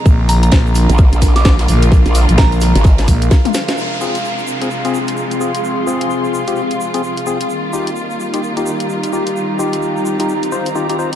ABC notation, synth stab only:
X:1
M:4/4
L:1/16
Q:"Swing 16ths" 1/4=129
K:Fdor
V:1 name="Synth stab"
z16 | z16 | z2 [CFA] z4 [CFA] z [CFA] z4 [CFA] z | z2 [CFA]4- [CFA] [CFG] z3 [CFA] z2 [CFA] z |
z2 [EFG] z4 [EFG] z [EFG] z4 [EFG] z | z2 [EFG]4- [EFG] [EFG] z2 [EFc] z [EFG] [EFG] [EFc] z |]